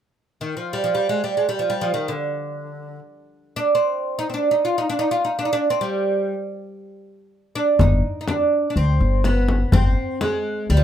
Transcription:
0.41 0.56 D#3 medium
0.57 0.72 F3 medium
0.73 0.82 G3 medium
0.84 0.93 F3 medium
0.95 1.09 G3 medium
1.09 1.23 G#3 medium
1.24 1.37 G3 medium
1.37 1.48 G#3 medium
1.49 1.59 G3 medium
1.59 1.70 F3 medium
1.70 1.82 G3 medium
1.81 1.93 F3 medium
1.94 2.09 D#3 medium
2.08 2.99 D3 medium
3.56 3.74 D4 medium
3.75 4.18 C4 medium
4.19 4.29 D#4 medium
4.30 4.33 C4 soft
4.34 4.50 D4 medium
4.51 4.64 D#4 medium
4.65 4.77 F4 medium
4.78 4.89 D#4 medium
4.90 4.99 D4 medium
4.99 5.11 D#4 medium
5.11 5.23 F4 medium
5.25 5.38 D#4 medium
5.39 5.45 D4 medium
5.45 5.52 D#4 medium
5.53 5.70 D4 medium
5.70 5.80 C4 medium
5.81 6.33 G3 medium
7.55 7.80 D4 medium
7.79 8.00 G1 medium
7.79 8.20 D#4 medium
7.79 frame drum medium
8.21 8.28 D#4 soft
8.28 8.67 D4 medium
8.28 frame drum medium
8.70 8.77 D4 medium
8.76 8.97 D2 medium
8.76 9.24 C4 medium
9.00 9.63 G1 medium
9.24 9.73 B3 medium
9.24 frame drum medium
9.49 frame drum medium
9.72 9.94 G1 medium
9.72 10.21 C4 medium
9.72 frame drum medium
10.21 10.70 G#3 medium
10.21 frame drum medium
10.70 10.84 D2 medium
10.70 10.77 G3 medium
10.77 10.84 F3 medium

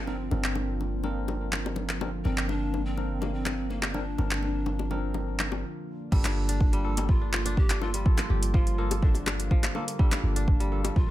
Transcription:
0.00 0.29 G1 medium
0.00 6.08 D3 medium
0.00 6.08 F3 medium
0.00 6.08 A#3 medium
0.00 2.21 C4 medium
0.00 6.08 F4 medium
0.07 0.16 C4 medium
0.07 1.04 C4 medium
0.07 0.16 D4 medium
0.07 0.16 A#4 loud
0.07 low bongo medium
0.31 2.23 G1 medium
0.31 1.01 C4 medium
0.31 1.01 D4 medium
0.31 1.01 A#4 medium
0.31 low bongo medium
0.44 clap medium
0.55 low bongo medium
0.81 low bongo medium
1.04 1.98 C4 medium
1.04 1.98 D4 medium
1.04 1.98 A#4 loud
1.04 low bongo medium
1.28 high bongo medium
1.28 low bongo medium
1.52 clap medium
1.52 low bongo medium
1.66 high bongo loud
1.76 low bongo medium
1.89 clap medium
2.01 2.10 C4 medium
2.01 2.10 D4 medium
2.01 2.10 A#4 loud
2.01 high bongo loud
2.01 low bongo medium
2.25 4.16 G1 medium
2.25 2.50 C4 loud
2.25 2.95 C4 medium
2.25 6.08 D4 medium
2.25 2.95 D4 medium
2.25 2.95 A#4 loud
2.25 low bongo medium
2.38 clap medium
2.49 2.87 D4 loud
2.49 low bongo medium
2.74 low bongo medium
2.86 3.22 C4 loud
2.97 3.92 C4 medium
2.97 3.92 D4 medium
2.97 3.92 A#4 loud
2.97 low bongo medium
3.21 3.35 A#3 medium
3.21 high bongo medium
3.21 low bongo medium
3.34 3.71 C4 loud
3.46 clap medium
3.46 high bongo medium
3.46 low bongo medium
3.70 3.82 A#3 medium
3.70 low bongo medium
3.82 3.95 A#3 medium
3.82 clap medium
3.82 high bongo medium
3.93 4.03 C4 medium
3.93 5.39 D4 loud
3.93 4.03 D4 medium
3.93 4.03 A#4 loud
3.93 low bongo medium
4.18 5.64 G1 medium
4.18 4.88 C4 medium
4.18 4.88 D4 medium
4.18 4.88 A#4 loud
4.18 low bongo medium
4.31 clap medium
4.43 low bongo medium
4.66 low bongo medium
4.79 high bongo medium
4.91 5.64 C4 medium
4.91 5.64 D4 medium
4.91 5.64 A#4 loud
4.91 low bongo medium
5.14 high bongo medium
5.14 low bongo medium
5.39 clap medium
5.39 low bongo medium
5.52 high bongo loud
6.12 8.24 G1 loud
6.12 11.11 D3 medium
6.12 11.11 F3 medium
6.12 11.11 G3 medium
6.12 6.72 G3 medium
6.12 11.11 A#3 medium
6.12 6.82 A#3 medium
6.12 7.05 D4 medium
6.12 11.11 F4 loud
6.12 6.82 F4 medium
6.12 6.82 A4 loud
6.12 kick loud
6.12 crash loud
6.24 clap loud
6.24 closed hi-hat medium
6.24 low bongo loud
6.49 7.21 D4 medium
6.49 closed hi-hat medium
6.60 kick loud
6.73 6.96 G3 loud
6.73 closed hi-hat soft
6.85 7.79 A#3 medium
6.85 7.79 F4 medium
6.85 7.79 A4 loud
6.97 7.93 G3 medium
6.97 closed hi-hat medium
6.97 high bongo loud
7.09 7.31 F4 loud
7.09 kick loud
7.21 7.45 D4 medium
7.33 7.60 F4 loud
7.33 clap medium
7.33 low bongo medium
7.46 7.69 D4 loud
7.46 closed hi-hat medium
7.57 7.84 G4 loud
7.57 kick loud
7.70 9.26 D4 medium
7.70 clap loud
7.70 closed hi-hat soft
7.81 7.90 A#3 loud
7.81 7.90 F4 medium
7.81 8.54 F4 loud
7.81 7.90 A4 loud
7.81 low bongo medium
7.94 9.07 G3 medium
7.94 closed hi-hat medium
8.06 8.75 A#3 loud
8.06 8.75 F4 medium
8.06 8.75 A4 loud
8.06 kick loud
8.17 clap medium
8.17 closed hi-hat soft
8.17 low bongo medium
8.30 9.69 G1 medium
8.30 9.71 G4 medium
8.43 closed hi-hat medium
8.54 9.07 F3 loud
8.54 9.04 F4 loud
8.54 kick loud
8.67 closed hi-hat soft
8.78 9.75 A#3 medium
8.78 9.72 A#3 loud
8.78 9.72 F4 medium
8.78 9.72 A4 loud
8.91 closed hi-hat medium
8.91 high bongo loud
9.02 11.11 D3 medium
9.02 9.75 D4 medium
9.02 kick loud
9.14 closed hi-hat soft
9.14 high bongo medium
9.26 10.36 D4 medium
9.26 clap loud
9.26 high bongo loud
9.26 low bongo medium
9.40 closed hi-hat medium
9.51 11.11 F3 loud
9.51 kick loud
9.63 clap loud
9.63 closed hi-hat soft
9.63 high bongo medium
9.75 11.11 A#3 medium
9.75 9.84 A#3 loud
9.75 9.84 F4 medium
9.75 9.84 A4 loud
9.75 low bongo medium
9.88 closed hi-hat medium
9.99 10.59 G3 medium
9.99 10.69 A#3 loud
9.99 10.98 D4 medium
9.99 10.69 F4 medium
9.99 10.69 A4 loud
9.99 kick loud
10.12 clap loud
10.12 closed hi-hat soft
10.12 low bongo loud
10.23 10.90 G1 medium
10.36 11.08 D4 medium
10.36 closed hi-hat medium
10.48 kick loud
10.60 10.83 G3 loud
10.60 closed hi-hat soft
10.72 11.11 A#3 loud
10.72 11.11 F4 medium
10.72 11.11 A4 loud
10.84 11.11 G3 medium
10.84 closed hi-hat medium
10.84 high bongo loud
10.96 11.11 A#1 medium
10.96 11.11 F4 loud
10.96 kick loud

